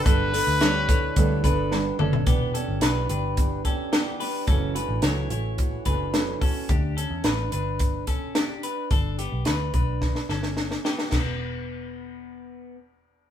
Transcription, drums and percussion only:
0.06 kick loud
0.06 hi-hat pedal medium
0.06 open hi-hat medium
0.34 hi-hat pedal medium
0.34 open hi-hat medium
0.61 snare loud
0.61 hi-hat pedal medium
0.61 open hi-hat loud
0.89 kick loud
0.89 hi-hat pedal medium
0.89 open hi-hat medium
1.16 kick medium
1.16 hi-hat pedal medium
1.16 open hi-hat loud
1.44 kick medium
1.44 hi-hat pedal medium
1.44 open hi-hat medium
1.72 snare medium
1.99 mid tom loud
2.13 floor tom loud
2.27 kick loud
2.27 closed hi-hat medium
2.55 closed hi-hat medium
2.81 snare loud
2.81 closed hi-hat medium
3.09 closed hi-hat medium
3.37 kick medium
3.37 closed hi-hat medium
3.65 kick medium
3.65 closed hi-hat medium
3.93 snare loud
3.93 closed hi-hat medium
4.21 open hi-hat medium
4.47 kick loud
4.47 closed hi-hat medium
4.76 closed hi-hat medium
5.02 snare loud
5.02 closed hi-hat medium
5.30 closed hi-hat medium
5.58 kick medium
5.58 closed hi-hat medium
5.85 kick medium
5.85 closed hi-hat medium
6.14 snare medium
6.14 closed hi-hat medium
6.42 kick medium
6.42 open hi-hat medium
6.69 kick loud
6.69 closed hi-hat medium
6.98 closed hi-hat medium
7.24 snare medium
7.24 closed hi-hat medium
7.52 closed hi-hat medium
7.79 kick medium
7.79 closed hi-hat medium
8.07 kick medium
8.07 closed hi-hat medium
8.35 snare loud
8.35 closed hi-hat medium
8.63 closed hi-hat medium
8.91 kick loud
8.91 closed hi-hat medium
9.19 closed hi-hat medium
9.45 snare medium
9.45 closed hi-hat medium
9.74 kick medium
9.74 closed hi-hat soft
10.01 kick medium
10.01 snare soft
10.15 snare soft
10.29 snare medium
10.43 snare medium
10.57 snare medium
10.71 snare medium
10.85 snare medium
10.98 snare medium
11.12 kick medium
11.12 snare medium
11.12 crash medium

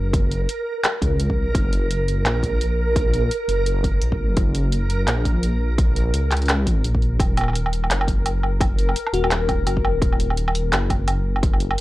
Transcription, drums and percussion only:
0.13 kick loud
0.13 closed hi-hat medium
0.31 closed hi-hat medium
0.49 closed hi-hat medium
0.84 clap loud
0.84 closed hi-hat medium
1.02 kick medium
1.02 closed hi-hat medium
1.20 closed hi-hat medium
1.30 kick medium
1.55 kick loud
1.55 closed hi-hat medium
1.73 closed hi-hat medium
1.91 closed hi-hat medium
2.08 closed hi-hat medium
2.26 clap loud
2.26 closed hi-hat medium
2.43 kick medium
2.43 closed hi-hat medium
2.61 closed hi-hat medium
2.96 kick loud
2.96 closed hi-hat medium
3.14 closed hi-hat medium
3.31 closed hi-hat medium
3.49 closed hi-hat medium
3.66 closed hi-hat medium
3.84 kick medium
3.84 closed hi-hat medium
4.02 closed hi-hat medium
4.12 kick medium
4.37 kick loud
4.37 closed hi-hat medium
4.55 closed hi-hat medium
4.72 closed hi-hat medium
4.90 closed hi-hat medium
5.08 clap loud
5.08 closed hi-hat medium
5.25 kick medium
5.25 closed hi-hat medium
5.43 closed hi-hat medium
5.78 kick loud
5.78 closed hi-hat medium
5.96 closed hi-hat medium
6.14 closed hi-hat medium
6.31 clap medium
6.31 closed hi-hat medium
6.37 closed hi-hat soft
6.42 closed hi-hat soft
6.46 clap loud
6.46 closed hi-hat soft
6.49 closed hi-hat medium
6.67 kick medium
6.67 closed hi-hat medium
6.84 closed hi-hat medium
6.95 kick medium
7.02 closed hi-hat soft
7.20 kick loud
7.20 closed hi-hat medium
7.20 low woodblock medium
7.37 closed hi-hat medium
7.37 low woodblock medium
7.41 low woodblock medium
7.44 low woodblock medium
7.48 low woodblock soft
7.53 closed hi-hat medium
7.53 low woodblock soft
7.66 low woodblock medium
7.73 closed hi-hat medium
7.84 low woodblock medium
7.91 clap loud
7.91 closed hi-hat medium
8.01 low woodblock medium
8.08 kick medium
8.08 closed hi-hat medium
8.26 closed hi-hat medium
8.26 low woodblock medium
8.43 low woodblock medium
8.61 kick loud
8.61 closed hi-hat medium
8.61 low woodblock medium
8.79 closed hi-hat medium
8.89 low woodblock medium
8.96 closed hi-hat medium
9.07 low woodblock medium
9.14 closed hi-hat medium
9.24 low woodblock medium
9.31 clap loud
9.31 closed hi-hat medium
9.49 kick medium
9.49 closed hi-hat medium
9.49 low woodblock medium
9.67 closed hi-hat medium
9.67 low woodblock medium
9.77 kick medium
9.85 low woodblock medium
10.02 kick loud
10.02 closed hi-hat medium
10.13 low woodblock medium
10.20 closed hi-hat medium
10.30 low woodblock medium
10.37 closed hi-hat medium
10.48 low woodblock medium
10.55 closed hi-hat medium
10.73 clap loud
10.73 closed hi-hat medium
10.73 low woodblock medium
10.90 kick medium
10.90 closed hi-hat medium
10.90 low woodblock medium
11.08 closed hi-hat medium
11.08 low woodblock medium
11.36 low woodblock medium
11.43 kick loud
11.43 closed hi-hat medium
11.53 low woodblock soft
11.60 closed hi-hat medium
11.71 low woodblock medium

